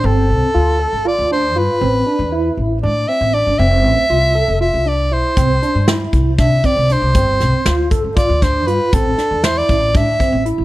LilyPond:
<<
  \new Staff \with { instrumentName = "Soprano saxophone" } { \time 7/8 \key g \mixolydian \tempo 4 = 118 a'2 d''8 c''8 b'8~ | b'4. r8 d''8 e''8 d''8 | e''2 e''8 d''8 c''8~ | c''4. r8 e''8 d''8 c''8~ |
c''4. r8 d''8 c''8 b'8 | a'4 c''16 d''8. e''4 r8 | }
  \new Staff \with { instrumentName = "Tine electric piano" } { \time 7/8 \key g \mixolydian c'4 f'8 a'8 f'8 d'8 f'8 | c'8 d'8 e'4 d'8 c'8 d'8 | c'4 f'8 a'8 f'8 d'8 e'8 | c'8 d'8 e'4 d'8 c'8 d'8 |
c'4 f'8 a'8 f'8 d'8 f'8 | c'8 d'8 e'4 d'8 c'8 e'8 | }
  \new Staff \with { instrumentName = "Upright bass" } { \clef bass \time 7/8 \key g \mixolydian g,,8 c,16 r16 d,8. g,,8 d,8. g,16 r16 | a,,8 r16 e,8. a,,8 a,8 r16 a,,8 g,,16 | f,,8 a,,16 r16 c,8. f,,8 c,8. b,,16 r16 | c,8 r16 g,8. c,8 c8 r16 c,8 c,16 |
g,,8 c,16 r16 d,8. g,,8 d,8. g,16 r16 | a,,8 r16 e,8. a,,8 a,8 r16 a,,8 a,,16 | }
  \new DrumStaff \with { instrumentName = "Drums" } \drummode { \time 7/8 r4 r4 r4. | r4 r4 r4. | r4 r4 r4. | <hh bd>8 hh8 <hh sn>8 <hh bd>8 <hh bd sn>8 <hh bd>8 hh8 |
<hh bd>8 <hh sn>8 <hh sn>8 <hh bd>8 <hh bd>8 <hh bd sn>8 hh8 | <hh bd>8 <hh sn>8 <hh sn>8 <hh bd>8 <hh bd>8 <hh bd>8 hh8 | }
>>